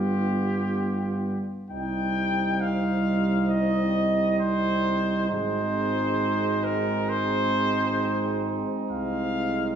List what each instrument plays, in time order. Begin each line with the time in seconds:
Already playing: bass trombone G1, trombone G3, french horn B3, flugelhorn F4, trumpet G4
1.70 bass trombone C2, trombone G3, french horn C4, flugelhorn D#4, trumpet G5
2.61 trumpet F5
3.50 trumpet D#5
4.39 trumpet C5
5.29 bass trombone G#1, trombone G#3, french horn C4, flugelhorn D#4, trumpet C5
6.64 trumpet A#4
7.09 trumpet C5
8.91 bass trombone C2, trumpet F5